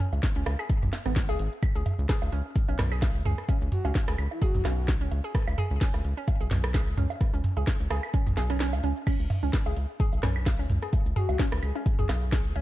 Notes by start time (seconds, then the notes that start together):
0.00 mid tom, open hi-hat
0.13 C#2, low woodblock, shaker
0.23 kick, snare, shaker
0.36 C#2 C#4, shaker
0.46 C#2, cross-stick, open hi-hat, low woodblock
0.59 G#4, high woodblock, shaker
0.70 kick, shaker
0.82 B1, mid tom, shaker
0.93 snare, open hi-hat, low woodblock
1.06 G#1 B3, cross-stick
1.16 kick, snare, shaker
1.29 C#2 G#4, low woodblock, shaker
1.39 G#1, open hi-hat
1.52 shaker
1.63 kick, high woodblock, shaker
1.75 C#2 G#4, shaker
1.86 mid tom, open hi-hat, low woodblock
1.99 C#2, shaker
2.09 G#4, kick, cross-stick, snare, shaker
2.22 C#2, low woodblock, shaker
2.32 C#2 C#4, open hi-hat
2.56 kick, shaker
2.68 B1 C#4, low woodblock, shaker
2.79 B1, cross-stick, snare, mid tom, open hi-hat
2.92 G#4, high woodblock
3.02 kick, snare, low woodblock, shaker
3.15 C#2, shaker
3.25 C#2 G#4, mid tom, open hi-hat
3.38 cross-stick, shaker
3.49 C#4, kick, low woodblock, shaker
3.61 C#2, shaker
3.72 F#4, mid tom, open hi-hat
3.85 C#2 C#4, low woodblock, shaker
3.95 kick, snare, shaker
4.08 C#2 G#4, cross-stick, shaker
4.18 C#2, open hi-hat, high woodblock
4.31 E4, low woodblock
4.42 F#4 G#4, kick, shaker
4.54 B1, mid tom, shaker
4.65 B1 C#4, cross-stick, snare, open hi-hat, low woodblock
4.88 kick, snare, shaker
5.01 C#2 C#4, shaker
5.11 C#2, open hi-hat, low woodblock
5.24 G#4, shaker
5.35 kick, cross-stick, shaker
5.47 C#2, high woodblock, low woodblock, shaker
5.58 G#4, mid tom, open hi-hat
5.71 C#2, shaker
5.81 C#4, kick, snare, shaker
5.94 C#2, cross-stick, low woodblock, shaker
6.04 C#2, open hi-hat
6.17 C#4
6.28 kick, low woodblock, shaker
6.40 B1 G#4, shaker
6.51 B1, snare, mid tom, open hi-hat
6.64 cross-stick
6.74 G#4, kick, snare, high woodblock, low woodblock, shaker
6.87 C#2, shaker
6.97 C#2 C#4, mid tom, open hi-hat
7.10 low woodblock, shaker
7.21 kick, cross-stick, shaker
7.33 C#2 C#4, shaker
7.44 mid tom, open hi-hat
7.57 C#2 G#4, low woodblock, shaker
7.67 kick, snare, shaker
7.80 C#2, shaker
7.90 C#2 G#4, cross-stick, open hi-hat, low woodblock
8.03 high woodblock, shaker
8.14 C#4, kick, shaker
8.26 B1, mid tom, shaker
8.37 B1 G#4, snare, open hi-hat, low woodblock
8.50 C#4, cross-stick, shaker
8.60 C#4, snare, shaker
8.73 C#2, low woodblock, shaker
8.84 C#2 C#4, open hi-hat
8.96 shaker
9.07 C#4, kick, crash, high woodblock, shaker
9.20 C#2, shaker
9.30 mid tom, open hi-hat, low woodblock
9.43 C#2 C#4, shaker
9.53 kick, cross-stick, snare, shaker
9.66 C#2 G#4, low woodblock, shaker
9.77 C#2, open hi-hat
10.00 G#4, kick, shaker
10.13 B1, low woodblock, shaker
10.23 B1 C#4, cross-stick, snare, mid tom, open hi-hat
10.36 high woodblock
10.46 kick, snare, low woodblock, shaker
10.59 C#2 C#4, shaker
10.70 C#2, mid tom, open hi-hat
10.82 G#4, cross-stick, shaker
10.93 kick, low woodblock, shaker
11.06 C#2, shaker
11.16 F#4 G#4, mid tom, open hi-hat
11.29 C#2, low woodblock, shaker
11.39 C#4, kick, snare, shaker
11.52 C#2, cross-stick, shaker
11.63 C#2 G#4, open hi-hat, high woodblock
11.75 C#4 G#4, low woodblock
11.86 kick, shaker
11.99 B1 G#4, mid tom, shaker
12.09 B1, cross-stick, snare, open hi-hat, low woodblock
12.32 G#4, kick, snare, shaker
12.45 C#2, shaker
12.56 C#2 C#4, open hi-hat, low woodblock